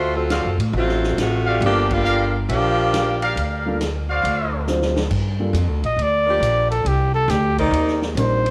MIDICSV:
0, 0, Header, 1, 8, 480
1, 0, Start_track
1, 0, Key_signature, -2, "minor"
1, 0, Tempo, 436999
1, 1773, Time_signature, 4, 2, 24, 8
1, 9342, End_track
2, 0, Start_track
2, 0, Title_t, "Trumpet section"
2, 0, Program_c, 0, 61
2, 335, Note_on_c, 0, 66, 78
2, 338, Note_on_c, 0, 72, 67
2, 338, Note_on_c, 0, 77, 85
2, 339, Note_on_c, 0, 74, 64
2, 549, Note_off_c, 0, 66, 0
2, 551, Note_off_c, 0, 72, 0
2, 551, Note_off_c, 0, 74, 0
2, 551, Note_off_c, 0, 77, 0
2, 1609, Note_on_c, 0, 74, 81
2, 1610, Note_on_c, 0, 67, 82
2, 1611, Note_on_c, 0, 77, 94
2, 2220, Note_off_c, 0, 67, 0
2, 2220, Note_off_c, 0, 74, 0
2, 2221, Note_off_c, 0, 77, 0
2, 2254, Note_on_c, 0, 67, 92
2, 2255, Note_on_c, 0, 70, 80
2, 2255, Note_on_c, 0, 77, 99
2, 2257, Note_on_c, 0, 74, 81
2, 2468, Note_off_c, 0, 67, 0
2, 2469, Note_off_c, 0, 70, 0
2, 2469, Note_off_c, 0, 77, 0
2, 2470, Note_off_c, 0, 74, 0
2, 3539, Note_on_c, 0, 70, 89
2, 3542, Note_on_c, 0, 74, 90
2, 3543, Note_on_c, 0, 67, 82
2, 3544, Note_on_c, 0, 77, 97
2, 4145, Note_off_c, 0, 70, 0
2, 4146, Note_off_c, 0, 74, 0
2, 4147, Note_off_c, 0, 67, 0
2, 4147, Note_off_c, 0, 77, 0
2, 4498, Note_on_c, 0, 74, 88
2, 4499, Note_on_c, 0, 72, 78
2, 4501, Note_on_c, 0, 77, 97
2, 4503, Note_on_c, 0, 66, 92
2, 5104, Note_off_c, 0, 74, 0
2, 5105, Note_off_c, 0, 72, 0
2, 5106, Note_off_c, 0, 77, 0
2, 5107, Note_off_c, 0, 66, 0
2, 9342, End_track
3, 0, Start_track
3, 0, Title_t, "Trumpet"
3, 0, Program_c, 1, 56
3, 6428, Note_on_c, 1, 75, 85
3, 6616, Note_on_c, 1, 74, 97
3, 6632, Note_off_c, 1, 75, 0
3, 7359, Note_off_c, 1, 74, 0
3, 7366, Note_on_c, 1, 69, 76
3, 7548, Note_on_c, 1, 67, 71
3, 7565, Note_off_c, 1, 69, 0
3, 7842, Note_off_c, 1, 67, 0
3, 7849, Note_on_c, 1, 69, 91
3, 8020, Note_on_c, 1, 67, 86
3, 8036, Note_off_c, 1, 69, 0
3, 8331, Note_off_c, 1, 67, 0
3, 8338, Note_on_c, 1, 63, 87
3, 8780, Note_off_c, 1, 63, 0
3, 8995, Note_on_c, 1, 72, 85
3, 9342, Note_off_c, 1, 72, 0
3, 9342, End_track
4, 0, Start_track
4, 0, Title_t, "Upright piano"
4, 0, Program_c, 2, 0
4, 1788, Note_on_c, 2, 55, 55
4, 1791, Note_on_c, 2, 58, 57
4, 1793, Note_on_c, 2, 62, 53
4, 1794, Note_on_c, 2, 69, 64
4, 1799, Note_on_c, 2, 65, 56
4, 2515, Note_off_c, 2, 55, 0
4, 2516, Note_off_c, 2, 58, 0
4, 2517, Note_off_c, 2, 62, 0
4, 2518, Note_off_c, 2, 69, 0
4, 2521, Note_off_c, 2, 65, 0
4, 4021, Note_on_c, 2, 55, 59
4, 4026, Note_on_c, 2, 65, 57
4, 4027, Note_on_c, 2, 62, 53
4, 4029, Note_on_c, 2, 58, 55
4, 4034, Note_on_c, 2, 69, 69
4, 4162, Note_off_c, 2, 55, 0
4, 4165, Note_off_c, 2, 62, 0
4, 4165, Note_off_c, 2, 65, 0
4, 4166, Note_off_c, 2, 58, 0
4, 4169, Note_off_c, 2, 69, 0
4, 5142, Note_on_c, 2, 54, 61
4, 5145, Note_on_c, 2, 60, 62
4, 5145, Note_on_c, 2, 65, 57
4, 5147, Note_on_c, 2, 62, 53
4, 5147, Note_on_c, 2, 72, 66
4, 5423, Note_off_c, 2, 54, 0
4, 5425, Note_off_c, 2, 60, 0
4, 5425, Note_off_c, 2, 65, 0
4, 5426, Note_off_c, 2, 62, 0
4, 5426, Note_off_c, 2, 72, 0
4, 5928, Note_on_c, 2, 55, 58
4, 5929, Note_on_c, 2, 58, 48
4, 5930, Note_on_c, 2, 69, 58
4, 5932, Note_on_c, 2, 62, 47
4, 5934, Note_on_c, 2, 65, 52
4, 6076, Note_off_c, 2, 55, 0
4, 6076, Note_off_c, 2, 58, 0
4, 6076, Note_off_c, 2, 69, 0
4, 6078, Note_off_c, 2, 62, 0
4, 6078, Note_off_c, 2, 65, 0
4, 8972, Note_on_c, 2, 60, 51
4, 8975, Note_on_c, 2, 63, 50
4, 8976, Note_on_c, 2, 55, 61
4, 8979, Note_on_c, 2, 62, 51
4, 8980, Note_on_c, 2, 70, 66
4, 9257, Note_off_c, 2, 60, 0
4, 9258, Note_off_c, 2, 63, 0
4, 9259, Note_off_c, 2, 55, 0
4, 9261, Note_off_c, 2, 62, 0
4, 9261, Note_off_c, 2, 70, 0
4, 9342, End_track
5, 0, Start_track
5, 0, Title_t, "Saxophone section"
5, 0, Program_c, 3, 65
5, 0, Note_on_c, 3, 57, 86
5, 0, Note_on_c, 3, 65, 80
5, 0, Note_on_c, 3, 66, 86
5, 0, Note_on_c, 3, 72, 104
5, 164, Note_off_c, 3, 65, 0
5, 167, Note_off_c, 3, 72, 0
5, 169, Note_off_c, 3, 66, 0
5, 171, Note_off_c, 3, 57, 0
5, 173, Note_on_c, 3, 69, 83
5, 177, Note_on_c, 3, 65, 65
5, 181, Note_on_c, 3, 60, 71
5, 182, Note_on_c, 3, 54, 72
5, 652, Note_off_c, 3, 69, 0
5, 654, Note_off_c, 3, 65, 0
5, 656, Note_off_c, 3, 54, 0
5, 656, Note_off_c, 3, 60, 0
5, 846, Note_on_c, 3, 54, 75
5, 850, Note_on_c, 3, 57, 68
5, 854, Note_on_c, 3, 60, 77
5, 855, Note_on_c, 3, 65, 81
5, 1277, Note_off_c, 3, 54, 0
5, 1280, Note_off_c, 3, 57, 0
5, 1281, Note_off_c, 3, 60, 0
5, 1282, Note_off_c, 3, 65, 0
5, 1322, Note_on_c, 3, 65, 73
5, 1326, Note_on_c, 3, 66, 85
5, 1329, Note_on_c, 3, 57, 76
5, 1331, Note_on_c, 3, 48, 73
5, 1788, Note_off_c, 3, 65, 0
5, 1790, Note_off_c, 3, 66, 0
5, 1791, Note_off_c, 3, 57, 0
5, 1792, Note_off_c, 3, 48, 0
5, 1821, Note_on_c, 3, 67, 108
5, 1822, Note_on_c, 3, 58, 97
5, 1823, Note_on_c, 3, 53, 96
5, 1825, Note_on_c, 3, 62, 92
5, 2094, Note_off_c, 3, 67, 0
5, 2095, Note_off_c, 3, 53, 0
5, 2095, Note_off_c, 3, 58, 0
5, 2097, Note_off_c, 3, 62, 0
5, 2120, Note_on_c, 3, 62, 81
5, 2121, Note_on_c, 3, 55, 80
5, 2122, Note_on_c, 3, 58, 83
5, 2126, Note_on_c, 3, 65, 88
5, 2586, Note_off_c, 3, 55, 0
5, 2586, Note_off_c, 3, 58, 0
5, 2586, Note_off_c, 3, 62, 0
5, 2589, Note_off_c, 3, 65, 0
5, 2734, Note_on_c, 3, 53, 96
5, 2738, Note_on_c, 3, 58, 91
5, 2742, Note_on_c, 3, 67, 110
5, 2743, Note_on_c, 3, 62, 85
5, 3650, Note_off_c, 3, 53, 0
5, 3652, Note_off_c, 3, 58, 0
5, 3654, Note_off_c, 3, 62, 0
5, 3654, Note_off_c, 3, 67, 0
5, 9342, End_track
6, 0, Start_track
6, 0, Title_t, "Saxophone section"
6, 0, Program_c, 4, 65
6, 6877, Note_on_c, 4, 58, 71
6, 6882, Note_on_c, 4, 62, 84
6, 6885, Note_on_c, 4, 67, 100
6, 6890, Note_on_c, 4, 53, 77
6, 7494, Note_off_c, 4, 58, 0
6, 7496, Note_off_c, 4, 62, 0
6, 7497, Note_off_c, 4, 67, 0
6, 7500, Note_off_c, 4, 53, 0
6, 8324, Note_on_c, 4, 60, 82
6, 8324, Note_on_c, 4, 74, 89
6, 8332, Note_on_c, 4, 70, 101
6, 8334, Note_on_c, 4, 51, 96
6, 8936, Note_off_c, 4, 60, 0
6, 8936, Note_off_c, 4, 74, 0
6, 8940, Note_off_c, 4, 70, 0
6, 8941, Note_off_c, 4, 51, 0
6, 9342, End_track
7, 0, Start_track
7, 0, Title_t, "Upright bass"
7, 0, Program_c, 5, 32
7, 0, Note_on_c, 5, 38, 78
7, 449, Note_off_c, 5, 38, 0
7, 493, Note_on_c, 5, 42, 68
7, 629, Note_off_c, 5, 42, 0
7, 635, Note_on_c, 5, 45, 70
7, 792, Note_off_c, 5, 45, 0
7, 805, Note_on_c, 5, 33, 94
7, 1255, Note_off_c, 5, 33, 0
7, 1286, Note_on_c, 5, 33, 62
7, 1736, Note_off_c, 5, 33, 0
7, 1763, Note_on_c, 5, 31, 89
7, 2684, Note_off_c, 5, 31, 0
7, 2731, Note_on_c, 5, 34, 81
7, 3649, Note_off_c, 5, 34, 0
7, 3688, Note_on_c, 5, 38, 79
7, 4607, Note_off_c, 5, 38, 0
7, 4651, Note_on_c, 5, 38, 82
7, 5568, Note_off_c, 5, 38, 0
7, 5606, Note_on_c, 5, 43, 74
7, 6069, Note_off_c, 5, 43, 0
7, 6076, Note_on_c, 5, 41, 89
7, 6238, Note_off_c, 5, 41, 0
7, 6238, Note_on_c, 5, 38, 55
7, 6390, Note_off_c, 5, 38, 0
7, 6397, Note_on_c, 5, 34, 59
7, 6545, Note_off_c, 5, 34, 0
7, 6552, Note_on_c, 5, 38, 75
7, 7023, Note_off_c, 5, 38, 0
7, 7029, Note_on_c, 5, 34, 82
7, 7506, Note_off_c, 5, 34, 0
7, 7520, Note_on_c, 5, 36, 72
7, 7991, Note_off_c, 5, 36, 0
7, 7996, Note_on_c, 5, 38, 98
7, 8461, Note_off_c, 5, 38, 0
7, 8468, Note_on_c, 5, 39, 85
7, 8945, Note_off_c, 5, 39, 0
7, 8953, Note_on_c, 5, 34, 81
7, 9342, Note_off_c, 5, 34, 0
7, 9342, End_track
8, 0, Start_track
8, 0, Title_t, "Drums"
8, 329, Note_on_c, 9, 38, 70
8, 331, Note_on_c, 9, 44, 45
8, 331, Note_on_c, 9, 51, 61
8, 439, Note_off_c, 9, 38, 0
8, 441, Note_off_c, 9, 44, 0
8, 441, Note_off_c, 9, 51, 0
8, 656, Note_on_c, 9, 51, 63
8, 766, Note_off_c, 9, 51, 0
8, 975, Note_on_c, 9, 38, 26
8, 1085, Note_off_c, 9, 38, 0
8, 1137, Note_on_c, 9, 38, 42
8, 1247, Note_off_c, 9, 38, 0
8, 1295, Note_on_c, 9, 38, 59
8, 1297, Note_on_c, 9, 44, 54
8, 1297, Note_on_c, 9, 51, 69
8, 1404, Note_off_c, 9, 38, 0
8, 1407, Note_off_c, 9, 44, 0
8, 1407, Note_off_c, 9, 51, 0
8, 1778, Note_on_c, 9, 51, 58
8, 1888, Note_off_c, 9, 51, 0
8, 2093, Note_on_c, 9, 49, 70
8, 2098, Note_on_c, 9, 36, 90
8, 2203, Note_off_c, 9, 49, 0
8, 2207, Note_off_c, 9, 36, 0
8, 2258, Note_on_c, 9, 44, 48
8, 2367, Note_off_c, 9, 44, 0
8, 2740, Note_on_c, 9, 51, 61
8, 2850, Note_off_c, 9, 51, 0
8, 3225, Note_on_c, 9, 38, 67
8, 3227, Note_on_c, 9, 44, 58
8, 3227, Note_on_c, 9, 51, 73
8, 3334, Note_off_c, 9, 38, 0
8, 3337, Note_off_c, 9, 44, 0
8, 3337, Note_off_c, 9, 51, 0
8, 3538, Note_on_c, 9, 51, 53
8, 3648, Note_off_c, 9, 51, 0
8, 3703, Note_on_c, 9, 51, 63
8, 3813, Note_off_c, 9, 51, 0
8, 4180, Note_on_c, 9, 38, 65
8, 4182, Note_on_c, 9, 44, 50
8, 4182, Note_on_c, 9, 51, 60
8, 4290, Note_off_c, 9, 38, 0
8, 4292, Note_off_c, 9, 44, 0
8, 4292, Note_off_c, 9, 51, 0
8, 4666, Note_on_c, 9, 51, 62
8, 4776, Note_off_c, 9, 51, 0
8, 5133, Note_on_c, 9, 38, 40
8, 5135, Note_on_c, 9, 44, 51
8, 5242, Note_off_c, 9, 38, 0
8, 5245, Note_off_c, 9, 44, 0
8, 5295, Note_on_c, 9, 38, 53
8, 5405, Note_off_c, 9, 38, 0
8, 5451, Note_on_c, 9, 38, 83
8, 5561, Note_off_c, 9, 38, 0
8, 5609, Note_on_c, 9, 49, 68
8, 5612, Note_on_c, 9, 36, 72
8, 5719, Note_off_c, 9, 49, 0
8, 5722, Note_off_c, 9, 36, 0
8, 6090, Note_on_c, 9, 44, 61
8, 6090, Note_on_c, 9, 51, 66
8, 6200, Note_off_c, 9, 44, 0
8, 6200, Note_off_c, 9, 51, 0
8, 6410, Note_on_c, 9, 51, 41
8, 6520, Note_off_c, 9, 51, 0
8, 6577, Note_on_c, 9, 51, 53
8, 6687, Note_off_c, 9, 51, 0
8, 7058, Note_on_c, 9, 44, 57
8, 7058, Note_on_c, 9, 51, 70
8, 7168, Note_off_c, 9, 44, 0
8, 7168, Note_off_c, 9, 51, 0
8, 7376, Note_on_c, 9, 51, 54
8, 7486, Note_off_c, 9, 51, 0
8, 7533, Note_on_c, 9, 51, 65
8, 7643, Note_off_c, 9, 51, 0
8, 8011, Note_on_c, 9, 38, 36
8, 8013, Note_on_c, 9, 44, 52
8, 8013, Note_on_c, 9, 51, 59
8, 8121, Note_off_c, 9, 38, 0
8, 8123, Note_off_c, 9, 44, 0
8, 8123, Note_off_c, 9, 51, 0
8, 8329, Note_on_c, 9, 36, 52
8, 8330, Note_on_c, 9, 51, 47
8, 8438, Note_off_c, 9, 36, 0
8, 8440, Note_off_c, 9, 51, 0
8, 8495, Note_on_c, 9, 51, 60
8, 8605, Note_off_c, 9, 51, 0
8, 8653, Note_on_c, 9, 38, 25
8, 8763, Note_off_c, 9, 38, 0
8, 8809, Note_on_c, 9, 38, 49
8, 8919, Note_off_c, 9, 38, 0
8, 8976, Note_on_c, 9, 44, 57
8, 8976, Note_on_c, 9, 51, 74
8, 9085, Note_off_c, 9, 44, 0
8, 9085, Note_off_c, 9, 51, 0
8, 9292, Note_on_c, 9, 51, 50
8, 9342, Note_off_c, 9, 51, 0
8, 9342, End_track
0, 0, End_of_file